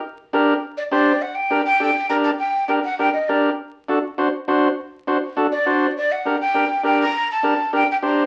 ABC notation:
X:1
M:4/4
L:1/16
Q:1/4=202
K:Gm
V:1 name="Flute"
z8 z2 d2 d4 | ^f2 g4 g6 b2 a2 | g4 g2 ^f2 g2 e2 d3 z | z16 |
z8 z2 d6 | d2 ^f4 g6 g2 b2- | b2 a6 g2 g2 b3 z |]
V:2 name="Transistor combo organ"
z4 [DGB]2 z6 [DGc]2 z2 | z4 [DGB]2 z2 [DGA]2 z2 [DGB]2 z2 | z4 [DGB]2 z2 [DGB]2 z2 [DGB]2 z2 | z4 [D^FA]2 z2 [DFc]2 z2 [DFc]2 z2 |
z4 [D^Fc]2 z2 [DFA]2 z2 [DFc]2 z2 | z4 [DGB]2 z2 [DGB]2 z2 [DGB]2 z2 | z4 [DGB]2 z2 [DGB]2 z2 [DGc]2 z2 |]